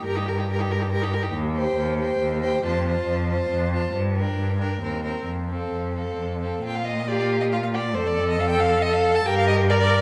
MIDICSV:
0, 0, Header, 1, 5, 480
1, 0, Start_track
1, 0, Key_signature, -2, "major"
1, 0, Tempo, 432588
1, 61, Time_signature, 3, 2, 24, 8
1, 4862, Tempo, 451128
1, 7262, Tempo, 436681
1, 10974, End_track
2, 0, Start_track
2, 0, Title_t, "Violin"
2, 0, Program_c, 0, 40
2, 75, Note_on_c, 0, 82, 78
2, 206, Note_on_c, 0, 79, 75
2, 222, Note_off_c, 0, 82, 0
2, 322, Note_on_c, 0, 82, 75
2, 339, Note_off_c, 0, 79, 0
2, 422, Note_on_c, 0, 79, 79
2, 439, Note_off_c, 0, 82, 0
2, 542, Note_off_c, 0, 79, 0
2, 553, Note_on_c, 0, 82, 84
2, 672, Note_on_c, 0, 79, 74
2, 689, Note_off_c, 0, 82, 0
2, 783, Note_on_c, 0, 82, 79
2, 799, Note_off_c, 0, 79, 0
2, 908, Note_on_c, 0, 79, 72
2, 924, Note_off_c, 0, 82, 0
2, 1013, Note_off_c, 0, 79, 0
2, 1019, Note_on_c, 0, 82, 84
2, 1149, Note_on_c, 0, 79, 75
2, 1165, Note_off_c, 0, 82, 0
2, 1274, Note_on_c, 0, 82, 78
2, 1290, Note_off_c, 0, 79, 0
2, 1383, Note_on_c, 0, 79, 77
2, 1400, Note_off_c, 0, 82, 0
2, 1497, Note_off_c, 0, 79, 0
2, 1744, Note_on_c, 0, 79, 87
2, 2208, Note_off_c, 0, 79, 0
2, 2225, Note_on_c, 0, 79, 91
2, 2689, Note_off_c, 0, 79, 0
2, 2697, Note_on_c, 0, 79, 90
2, 2929, Note_off_c, 0, 79, 0
2, 2954, Note_on_c, 0, 81, 84
2, 3178, Note_off_c, 0, 81, 0
2, 3197, Note_on_c, 0, 81, 80
2, 3659, Note_off_c, 0, 81, 0
2, 3668, Note_on_c, 0, 81, 82
2, 4135, Note_off_c, 0, 81, 0
2, 4146, Note_on_c, 0, 81, 80
2, 4378, Note_off_c, 0, 81, 0
2, 4631, Note_on_c, 0, 79, 79
2, 5086, Note_off_c, 0, 79, 0
2, 5093, Note_on_c, 0, 79, 71
2, 5315, Note_off_c, 0, 79, 0
2, 5321, Note_on_c, 0, 79, 68
2, 5556, Note_off_c, 0, 79, 0
2, 5563, Note_on_c, 0, 79, 66
2, 5802, Note_off_c, 0, 79, 0
2, 6046, Note_on_c, 0, 77, 66
2, 6523, Note_off_c, 0, 77, 0
2, 6528, Note_on_c, 0, 77, 65
2, 7007, Note_off_c, 0, 77, 0
2, 7029, Note_on_c, 0, 77, 71
2, 7254, Note_off_c, 0, 77, 0
2, 7260, Note_on_c, 0, 79, 108
2, 7390, Note_on_c, 0, 77, 93
2, 7406, Note_off_c, 0, 79, 0
2, 7492, Note_on_c, 0, 75, 109
2, 7509, Note_off_c, 0, 77, 0
2, 7746, Note_on_c, 0, 74, 108
2, 7763, Note_off_c, 0, 75, 0
2, 7868, Note_off_c, 0, 74, 0
2, 7879, Note_on_c, 0, 74, 106
2, 7967, Note_off_c, 0, 74, 0
2, 8108, Note_on_c, 0, 75, 103
2, 8157, Note_off_c, 0, 75, 0
2, 8234, Note_on_c, 0, 77, 111
2, 8282, Note_off_c, 0, 77, 0
2, 8354, Note_on_c, 0, 77, 104
2, 8401, Note_off_c, 0, 77, 0
2, 8472, Note_on_c, 0, 74, 110
2, 8699, Note_on_c, 0, 72, 112
2, 8716, Note_off_c, 0, 74, 0
2, 8835, Note_on_c, 0, 74, 112
2, 8851, Note_off_c, 0, 72, 0
2, 9072, Note_off_c, 0, 74, 0
2, 9077, Note_on_c, 0, 75, 114
2, 9200, Note_on_c, 0, 77, 127
2, 9216, Note_off_c, 0, 75, 0
2, 9293, Note_off_c, 0, 77, 0
2, 9299, Note_on_c, 0, 79, 127
2, 9420, Note_on_c, 0, 77, 127
2, 9436, Note_off_c, 0, 79, 0
2, 9661, Note_on_c, 0, 75, 127
2, 9677, Note_off_c, 0, 77, 0
2, 9780, Note_on_c, 0, 77, 120
2, 9796, Note_off_c, 0, 75, 0
2, 10025, Note_on_c, 0, 81, 127
2, 10041, Note_off_c, 0, 77, 0
2, 10146, Note_on_c, 0, 79, 127
2, 10162, Note_off_c, 0, 81, 0
2, 10262, Note_off_c, 0, 79, 0
2, 10268, Note_on_c, 0, 77, 127
2, 10376, Note_off_c, 0, 77, 0
2, 10383, Note_on_c, 0, 75, 127
2, 10470, Note_off_c, 0, 75, 0
2, 10626, Note_on_c, 0, 74, 127
2, 10672, Note_off_c, 0, 74, 0
2, 10744, Note_on_c, 0, 74, 127
2, 10974, Note_off_c, 0, 74, 0
2, 10974, End_track
3, 0, Start_track
3, 0, Title_t, "Violin"
3, 0, Program_c, 1, 40
3, 60, Note_on_c, 1, 70, 79
3, 185, Note_on_c, 1, 67, 78
3, 201, Note_off_c, 1, 70, 0
3, 316, Note_on_c, 1, 70, 72
3, 332, Note_off_c, 1, 67, 0
3, 443, Note_on_c, 1, 67, 74
3, 459, Note_off_c, 1, 70, 0
3, 552, Note_off_c, 1, 67, 0
3, 581, Note_on_c, 1, 70, 73
3, 673, Note_on_c, 1, 67, 79
3, 690, Note_off_c, 1, 70, 0
3, 796, Note_on_c, 1, 70, 80
3, 812, Note_off_c, 1, 67, 0
3, 919, Note_on_c, 1, 67, 69
3, 936, Note_off_c, 1, 70, 0
3, 1024, Note_off_c, 1, 67, 0
3, 1030, Note_on_c, 1, 70, 82
3, 1146, Note_on_c, 1, 67, 78
3, 1163, Note_off_c, 1, 70, 0
3, 1264, Note_on_c, 1, 70, 84
3, 1281, Note_off_c, 1, 67, 0
3, 1371, Note_on_c, 1, 67, 74
3, 1388, Note_off_c, 1, 70, 0
3, 1491, Note_off_c, 1, 67, 0
3, 1728, Note_on_c, 1, 72, 83
3, 2200, Note_off_c, 1, 72, 0
3, 2228, Note_on_c, 1, 72, 83
3, 2678, Note_off_c, 1, 72, 0
3, 2685, Note_on_c, 1, 72, 85
3, 2923, Note_off_c, 1, 72, 0
3, 2939, Note_on_c, 1, 72, 79
3, 3154, Note_off_c, 1, 72, 0
3, 3161, Note_on_c, 1, 72, 79
3, 3641, Note_off_c, 1, 72, 0
3, 3655, Note_on_c, 1, 72, 80
3, 4128, Note_off_c, 1, 72, 0
3, 4154, Note_on_c, 1, 72, 81
3, 4381, Note_off_c, 1, 72, 0
3, 4622, Note_on_c, 1, 70, 71
3, 5087, Note_off_c, 1, 70, 0
3, 5103, Note_on_c, 1, 70, 68
3, 5330, Note_off_c, 1, 70, 0
3, 5349, Note_on_c, 1, 70, 65
3, 5563, Note_off_c, 1, 70, 0
3, 5569, Note_on_c, 1, 70, 65
3, 5806, Note_off_c, 1, 70, 0
3, 6053, Note_on_c, 1, 69, 63
3, 6527, Note_off_c, 1, 69, 0
3, 6538, Note_on_c, 1, 69, 62
3, 7013, Note_off_c, 1, 69, 0
3, 7027, Note_on_c, 1, 69, 61
3, 7259, Note_off_c, 1, 69, 0
3, 7270, Note_on_c, 1, 65, 81
3, 7717, Note_off_c, 1, 65, 0
3, 7759, Note_on_c, 1, 65, 85
3, 8228, Note_off_c, 1, 65, 0
3, 8240, Note_on_c, 1, 65, 80
3, 8328, Note_off_c, 1, 65, 0
3, 8476, Note_on_c, 1, 67, 81
3, 8564, Note_off_c, 1, 67, 0
3, 8717, Note_on_c, 1, 69, 86
3, 9182, Note_off_c, 1, 69, 0
3, 9216, Note_on_c, 1, 69, 93
3, 9669, Note_off_c, 1, 69, 0
3, 9681, Note_on_c, 1, 69, 102
3, 10140, Note_off_c, 1, 69, 0
3, 10147, Note_on_c, 1, 70, 103
3, 10612, Note_off_c, 1, 70, 0
3, 10628, Note_on_c, 1, 70, 104
3, 10974, Note_off_c, 1, 70, 0
3, 10974, End_track
4, 0, Start_track
4, 0, Title_t, "Viola"
4, 0, Program_c, 2, 41
4, 56, Note_on_c, 2, 67, 90
4, 174, Note_on_c, 2, 63, 70
4, 191, Note_off_c, 2, 67, 0
4, 297, Note_on_c, 2, 67, 80
4, 314, Note_off_c, 2, 63, 0
4, 417, Note_on_c, 2, 63, 75
4, 433, Note_off_c, 2, 67, 0
4, 533, Note_off_c, 2, 63, 0
4, 540, Note_on_c, 2, 67, 77
4, 662, Note_on_c, 2, 63, 76
4, 678, Note_off_c, 2, 67, 0
4, 787, Note_on_c, 2, 67, 72
4, 804, Note_off_c, 2, 63, 0
4, 898, Note_on_c, 2, 63, 73
4, 915, Note_off_c, 2, 67, 0
4, 1017, Note_off_c, 2, 63, 0
4, 1023, Note_on_c, 2, 67, 80
4, 1132, Note_on_c, 2, 63, 76
4, 1148, Note_off_c, 2, 67, 0
4, 1246, Note_on_c, 2, 67, 81
4, 1263, Note_off_c, 2, 63, 0
4, 1364, Note_on_c, 2, 63, 74
4, 1381, Note_off_c, 2, 67, 0
4, 1487, Note_off_c, 2, 63, 0
4, 1735, Note_on_c, 2, 67, 83
4, 2200, Note_off_c, 2, 67, 0
4, 2206, Note_on_c, 2, 67, 76
4, 2680, Note_off_c, 2, 67, 0
4, 2698, Note_on_c, 2, 67, 84
4, 2929, Note_off_c, 2, 67, 0
4, 2946, Note_on_c, 2, 65, 79
4, 3174, Note_off_c, 2, 65, 0
4, 3188, Note_on_c, 2, 65, 81
4, 3654, Note_off_c, 2, 65, 0
4, 3660, Note_on_c, 2, 65, 76
4, 4124, Note_off_c, 2, 65, 0
4, 4130, Note_on_c, 2, 65, 77
4, 4369, Note_off_c, 2, 65, 0
4, 4632, Note_on_c, 2, 62, 71
4, 5087, Note_off_c, 2, 62, 0
4, 5093, Note_on_c, 2, 62, 63
4, 5316, Note_off_c, 2, 62, 0
4, 5323, Note_on_c, 2, 60, 68
4, 5560, Note_off_c, 2, 60, 0
4, 5573, Note_on_c, 2, 60, 66
4, 5808, Note_off_c, 2, 60, 0
4, 6053, Note_on_c, 2, 60, 64
4, 6527, Note_off_c, 2, 60, 0
4, 6535, Note_on_c, 2, 60, 61
4, 7011, Note_off_c, 2, 60, 0
4, 7023, Note_on_c, 2, 60, 59
4, 7257, Note_off_c, 2, 60, 0
4, 7746, Note_on_c, 2, 67, 101
4, 8243, Note_on_c, 2, 65, 84
4, 8260, Note_off_c, 2, 67, 0
4, 8707, Note_off_c, 2, 65, 0
4, 8714, Note_on_c, 2, 69, 105
4, 10114, Note_off_c, 2, 69, 0
4, 10155, Note_on_c, 2, 67, 117
4, 10630, Note_on_c, 2, 70, 115
4, 10646, Note_off_c, 2, 67, 0
4, 10974, Note_off_c, 2, 70, 0
4, 10974, End_track
5, 0, Start_track
5, 0, Title_t, "Cello"
5, 0, Program_c, 3, 42
5, 50, Note_on_c, 3, 43, 97
5, 1457, Note_off_c, 3, 43, 0
5, 1485, Note_on_c, 3, 39, 107
5, 1910, Note_off_c, 3, 39, 0
5, 1957, Note_on_c, 3, 39, 107
5, 2388, Note_off_c, 3, 39, 0
5, 2446, Note_on_c, 3, 39, 101
5, 2871, Note_off_c, 3, 39, 0
5, 2930, Note_on_c, 3, 41, 104
5, 3356, Note_off_c, 3, 41, 0
5, 3404, Note_on_c, 3, 41, 102
5, 3836, Note_off_c, 3, 41, 0
5, 3890, Note_on_c, 3, 41, 100
5, 4317, Note_off_c, 3, 41, 0
5, 4368, Note_on_c, 3, 43, 101
5, 4799, Note_off_c, 3, 43, 0
5, 4858, Note_on_c, 3, 43, 91
5, 5273, Note_off_c, 3, 43, 0
5, 5324, Note_on_c, 3, 39, 87
5, 5750, Note_off_c, 3, 39, 0
5, 5795, Note_on_c, 3, 41, 78
5, 6230, Note_off_c, 3, 41, 0
5, 6285, Note_on_c, 3, 41, 77
5, 6717, Note_off_c, 3, 41, 0
5, 6771, Note_on_c, 3, 41, 75
5, 7201, Note_off_c, 3, 41, 0
5, 7250, Note_on_c, 3, 46, 90
5, 8712, Note_on_c, 3, 41, 94
5, 8729, Note_off_c, 3, 46, 0
5, 10126, Note_off_c, 3, 41, 0
5, 10133, Note_on_c, 3, 43, 110
5, 10974, Note_off_c, 3, 43, 0
5, 10974, End_track
0, 0, End_of_file